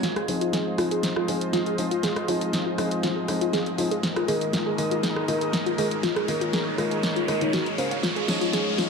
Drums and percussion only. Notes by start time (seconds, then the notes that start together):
0.03 snare, closed hi-hat
0.16 cross-stick, closed hi-hat
0.28 open hi-hat
0.41 closed hi-hat
0.53 snare, closed hi-hat
0.78 cross-stick, open hi-hat
0.91 closed hi-hat
1.03 snare, closed hi-hat
1.16 cross-stick
1.28 open hi-hat
1.41 closed hi-hat
1.53 snare, closed hi-hat
1.66 closed hi-hat
1.78 open hi-hat
1.91 closed hi-hat
2.03 snare, closed hi-hat
2.16 cross-stick, closed hi-hat
2.28 open hi-hat
2.41 closed hi-hat
2.53 snare, closed hi-hat
2.78 cross-stick, open hi-hat
2.91 closed hi-hat
3.03 snare, closed hi-hat
3.28 cross-stick, open hi-hat
3.41 closed hi-hat
3.53 snare, closed hi-hat
3.66 closed hi-hat
3.78 open hi-hat
3.91 closed hi-hat
4.03 snare, closed hi-hat
4.16 cross-stick, closed hi-hat
4.28 open hi-hat
4.41 closed hi-hat
4.53 snare, closed hi-hat
4.78 open hi-hat
4.91 closed hi-hat
5.03 snare, closed hi-hat
5.16 cross-stick
5.28 open hi-hat
5.41 closed hi-hat
5.53 snare, closed hi-hat
5.66 closed hi-hat
5.78 open hi-hat
5.91 closed hi-hat
6.03 snare, closed hi-hat
6.16 cross-stick, closed hi-hat
6.28 open hi-hat
6.41 closed hi-hat
6.53 snare, closed hi-hat
6.78 cross-stick, open hi-hat
6.91 closed hi-hat
7.03 snare, closed hi-hat
7.16 closed hi-hat
7.28 cross-stick, open hi-hat
7.41 closed hi-hat
7.53 snare, closed hi-hat
7.66 closed hi-hat
7.78 open hi-hat
7.91 closed hi-hat
8.03 snare, closed hi-hat, tambourine
8.16 closed hi-hat
8.28 snare, open hi-hat, tambourine
8.41 closed hi-hat, tambourine
8.53 snare, closed hi-hat, tambourine
8.78 snare, open hi-hat, tambourine